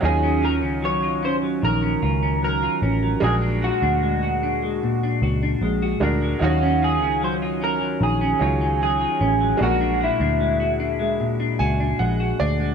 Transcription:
<<
  \new Staff \with { instrumentName = "Clean electric guitar" } { \time 4/4 \key ees \dorian \tempo 4 = 75 aes'8 bes'8 des''8 c''8 bes'4 bes'4 | aes'8 fis'2 r4. | ges'8 aes'8 c''8 bes'8 aes'4 aes'4 | fis'8 fes'2 r4. | }
  \new Staff \with { instrumentName = "Upright piano" } { \time 4/4 \key ees \dorian << { r1 | r1 | r1 | r2 r8 aes''8 fis''8 d''8 | } \\ { <ges des' ees' f'>1 | <aes d' fis' bes'>2.~ <aes d' fis' bes'>8 <aes d' fis' bes'>8 | <ges des' ees' f''>2~ <ges des' ees' f''>8 <ges ees' f' des''>4. | <aes d' fis' bes'>1 | } >> }
  \new Staff \with { instrumentName = "Clean electric guitar" } { \time 4/4 \key ees \dorian ees16 des'16 f'16 des'16 ges16 f'16 des'16 ges16 ees16 des'16 f'16 des'16 ges16 f'16 des'16 ges16 | bes,16 d'16 fis'16 d'16 aes16 fis'16 d'16 aes16 bes,16 d'16 fis'16 d'16 aes16 fis'16 d'16 aes16 | ees16 des'16 f'16 des'16 ges16 f'16 des'16 ges16 ees16 des'16 f'16 des'16 ges16 f'16 des'16 ges16 | bes,16 d'16 fis'16 d'16 aes16 fis'16 d'16 aes16 bes,16 d'16 fis'16 d'16 aes16 fis'16 d'16 aes16 | }
  \new Staff \with { instrumentName = "Picked electric bass" } { \clef bass \time 4/4 \key ees \dorian ees,8. des,4~ des,16 bes,,8 des,4 a,,8 | bes,,8. d,4.~ d,16 cis,8 bes,,8 d,8 | ees,8. des,4~ des,16 bes,,8 des,4 a,,8 | bes,,8. d,4.~ d,16 cis,8 bes,,8 d,8 | }
>>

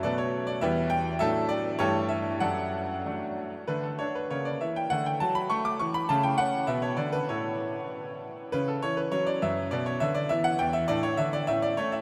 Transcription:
<<
  \new Staff \with { instrumentName = "Grand piano" } { \time 2/4 \key d \major \tempo 4 = 101 <a' b' d''>16 cis''8 d''16 <g' b' e''>8 g''8 | <a' e''>8 d''8 <g' a' cis''>8 e''8 | <a' d'' fis''>4. r8 | b'16 a'16 cis''16 b'16 cis''16 d''16 e''16 g''16 |
fis''16 g''16 a''16 b''16 cis'''16 d'''16 cis'''16 b''16 | a''16 g''16 fis''8 e''16 cis''16 d''16 b'16 | cis''4. r8 | b'16 a'16 cis''16 b'16 cis''16 d''16 e''8 |
d''16 cis''16 e''16 d''16 e''16 fis''16 g''16 e''16 | d''16 cis''16 e''16 d''16 e''16 d''16 cis''16 e''16 | }
  \new Staff \with { instrumentName = "Grand piano" } { \clef bass \time 2/4 \key d \major << { r2 | r2 | r2 | a4 ais4 |
a2 | a4 b4 | r2 | cis'4 cis'4 |
b4 b4 | d'4 cis'4 | } \\ { <b, fis a b>4 <e, e g b>4 | <a, fis a d'>4 <g, e a e'>4 | fis,4 <fis a d'>4 | d8 d'8 cis8 e8 |
d8 fis8 a8 e8 | cis8 cis'8 b,8 d8 | <a, e' a'>4 r4 | cis8 e8 fis8 fis,8 |
b,8 d8 e8 e,8 | a,8 d8 a,8 a8 | } >> }
>>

